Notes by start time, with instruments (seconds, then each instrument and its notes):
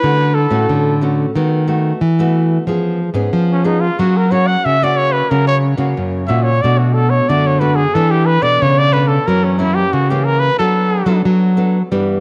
Already playing: trumpet B4
0.03 nylon-string guitar D3 A3 C#4 F#4
0.35 trumpet A4
0.50 nylon-string guitar A2 A3 C#4 F#4
0.69 nylon-string guitar A2 D3
1.01 nylon-string guitar A3 C#4 F#4
1.36 nylon-string guitar D#3 A3 B3 F#4
1.68 nylon-string guitar A3 B3 F#4
2.01 nylon-string guitar E3
2.19 nylon-string guitar A3 B3 F#4
2.67 nylon-string guitar F3 B3 C#4 G#4
3.14 nylon-string guitar G#2 B3 C#4 G#4
3.33 nylon-string guitar F3
3.52 trumpet C#4
3.64 nylon-string guitar B3 C#4 G#4, trumpet D#4
3.81 trumpet F4
3.99 nylon-string guitar F#3 A#3 C#4 F#4, trumpet F#4
4.17 trumpet A#4
4.31 nylon-string guitar A#3 C#4 F#4, trumpet C#5
4.47 trumpet F#5
4.65 nylon-string guitar C#3, trumpet E5
4.82 nylon-string guitar A#3 C#4 F#4, trumpet D5
4.97 trumpet C#5
5.12 trumpet B4
5.30 nylon-string guitar C#3 F#3 A#3 C#4 F#4, trumpet A#4
5.47 trumpet C#5
5.77 nylon-string guitar C#3 A#3 C#4 F#4
5.97 nylon-string guitar F#2 C#3
6.27 nylon-string guitar A#2 A#3 C#4 F#4, trumpet E5
6.43 trumpet C#5
6.62 nylon-string guitar B2 A3 D4 F#4, trumpet D5
6.79 trumpet F#4
6.94 trumpet A4
7.10 trumpet C#5
7.29 nylon-string guitar F#2 D3 A3 D4 F#4, trumpet D5
7.47 trumpet C#5
7.60 nylon-string guitar A3 D4 F#4, trumpet B4
7.76 trumpet G#4
7.94 nylon-string guitar E3 B3 D4 A4, trumpet A4
8.11 trumpet G4
8.26 trumpet B4
8.42 nylon-string guitar B2 B3 D4 A4, trumpet D5
8.61 nylon-string guitar B2 C#3, trumpet C#5
8.78 trumpet D5
8.93 nylon-string guitar B3 D4 A4, trumpet B4
9.08 trumpet A4
9.27 nylon-string guitar F#2 E3 F#3 A#3 C#4, trumpet A#4
9.45 trumpet C#4
9.59 nylon-string guitar E3 A#3 C#4, trumpet E4
9.75 trumpet G4
9.93 nylon-string guitar C#3, trumpet F#4
10.10 nylon-string guitar E3 A#3 C#4, trumpet G4
10.25 trumpet A#4
10.40 trumpet B4
10.59 nylon-string guitar F#3 B3 D4 A4, trumpet A4
11.06 nylon-string guitar F#3 B3 D4 A4
11.25 nylon-string guitar F#3
11.57 nylon-string guitar B3 D4 A4
11.91 nylon-string guitar G2 E3 G3 B3 D4